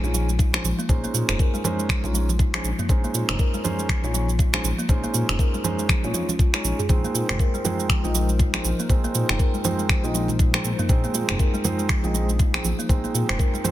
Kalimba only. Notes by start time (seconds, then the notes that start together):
0.04 F4
0.14 F3
0.39 D#4
0.53 F3
0.79 A#3
1.04 A#3
1.14 F4
1.39 A#4
1.54 G#3
1.79 G#3
2.04 F4
2.14 F3
2.39 D#4
2.54 F3
2.79 A#3
3.04 A#3
3.15 F4
3.40 A#4
3.54 G#3
3.79 G#3
4.04 F4
4.14 F3
4.39 D#4
4.53 F3
4.79 A#3
5.04 A#3
5.14 F4
5.39 A#4
5.54 G#3
5.79 G#3
6.04 F4
6.14 F4
6.29 C#4
6.39 F4
6.54 G#3
6.79 G#4
7.04 A#3
7.15 F4
7.40 A#4
7.54 G#3
7.65 F4
7.79 G#3
8.04 F4
8.15 F3
8.40 D#4
8.54 F3
8.79 A#3
9.04 A#3
9.15 F4
9.39 A#4
9.54 G#3
9.64 F4
9.79 G#3
10.04 F4
10.14 F3
10.39 D#4
10.54 F3
10.79 A#3
11.04 A#3
11.15 F4
11.39 A#4
11.54 G#3
11.64 F4
11.79 G#3
12.04 F4
12.14 F3
12.39 D#4
12.54 F3
12.79 A#3
13.04 A#3
13.14 F4
13.39 A#4
13.54 G#3
13.64 F4